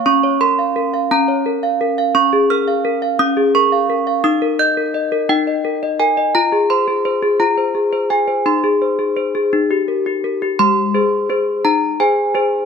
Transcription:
\new Staff \with { instrumentName = "Handbells" } { \time 6/8 \key bes \dorian \tempo 4. = 57 << { des'''8 c'''4 bes''8 r4 | \key aes \major des'''8 f'''4 ees'''8 des'''4 | ees'''8 g'''4 g''4 aes''8 | bes''8 c'''4 bes''4 aes''8 |
c'''4. r4. | c'''4. bes''8 aes''4 | } \\ { des'16 des''16 bes'16 f''16 bes'16 f''16 des'16 des''16 bes'16 f''16 bes'16 f''16 | des'16 aes'16 bes'16 f''16 bes'16 f''16 des'16 aes'16 bes'16 f''16 bes'16 f''16 | ees'16 bes'16 ees''16 bes'16 ees''16 bes'16 ees'16 ees''16 bes'16 ees''16 bes'16 ees''16 | f'16 aes'16 c''16 aes'16 c''16 aes'16 f'16 c''16 aes'16 c''16 aes'16 c''16 |
ees'16 aes'16 c''16 aes'16 c''16 aes'16 ees'16 g'16 bes'16 g'16 bes'16 g'16 | aes8 <aes' c''>8 <aes' c''>8 ees'8 <aes' c''>8 <aes' c''>8 | } >> }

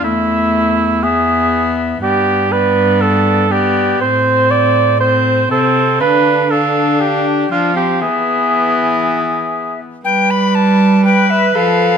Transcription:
<<
  \new Staff \with { instrumentName = "Recorder" } { \time 4/4 \key g \mixolydian \tempo 4 = 120 e''4. r8 e''2 | d''4 d''2 d''4 | c''2 c''4 c''4 | f''4 f''2 f''4 |
e''2.~ e''8 r8 | g''8 b''8 a''4 g''8 e''8 f''4 | }
  \new Staff \with { instrumentName = "Cor anglais" } { \time 4/4 \key g \mixolydian e'2 gis'4. r8 | g'4 b'4 a'4 g'4 | c''4 d''4 c''4 a'4 | b'4 a'4 g'4 f'8 g'8 |
gis'2.~ gis'8 r8 | b'2 b'2 | }
  \new Staff \with { instrumentName = "Viola" } { \time 4/4 \key g \mixolydian a2 b2 | b4 b2 b4 | c'2 c'4 c'4 | d'4 d'2 d'8 c'8 |
b2.~ b8 r8 | r2 b'4 a'4 | }
  \new Staff \with { instrumentName = "Cello" } { \clef bass \time 4/4 \key g \mixolydian e,1 | g,1 | a,2. c4 | d2. f4 |
e2.~ e8 r8 | g2. f4 | }
>>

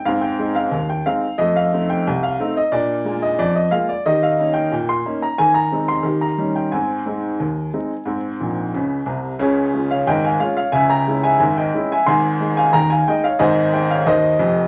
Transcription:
<<
  \new Staff \with { instrumentName = "Upright piano" } { \time 2/4 \key aes \major \tempo 4 = 90 f''16 g''8 f''8 g''16 f''8 | ees''16 f''8 g''8 f''8 ees''16 | d''8. ees''16 d''16 ees''16 f''16 d''16 | ees''16 f''8 g''8 c'''8 bes''16 |
aes''16 bes''8 c'''8 bes''8 g''16 | aes''2~ | aes''4 r4 | <aes' des''>8. <des'' f''>16 <ees'' g''>16 <f'' aes''>16 <des'' f''>16 <des'' f''>16 |
<fes'' aes''>16 <g'' bes''>8 <fes'' aes''>8 <ees'' g''>8 <fes'' aes''>16 | <aes'' c'''>8. <f'' aes''>16 <g'' bes''>16 <f'' aes''>16 <ees'' g''>16 <des'' f''>16 | <c'' ees''>8 <ees'' g''>16 <des'' f''>16 <c'' ees''>4 | }
  \new Staff \with { instrumentName = "Upright piano" } { \clef bass \time 2/4 \key aes \major <aes, c'>8 <aes c' ees'>8 ees,8 <aes c' ees'>8 | <f, a>8 <a c' ees'>8 c,8 <a c' ees'>8 | <bes, d'>8 <aes bes f'>8 f,8 <aes bes f'>8 | <ees g'>8 <bes des' ees'>8 bes,8 <bes des' ees'>8 |
ees8 <aes c' ees'>8 <ees g'>8 <g des' ees'>8 | <aes, c'>8 <aes c' ees'>8 ees,8 <aes c' ees'>8 | <aes, c'>8 <bes,, bes,>8 <des, des>8 <c, c>8 | <des, des>8 <aes des' f'>8 <aes,, aes,>8 <aes des' f'>8 |
<des, des>8 <aes des' fes'>8 <aes,, aes,>8 <aes des' fes'>8 | <aes,, aes,>8 <aes ees'>8 <ees, ees>8 <aes ees'>8 | <aes,, aes,>8 <aes ees'>8 <ees, ees>8 <f,, f,>8 | }
>>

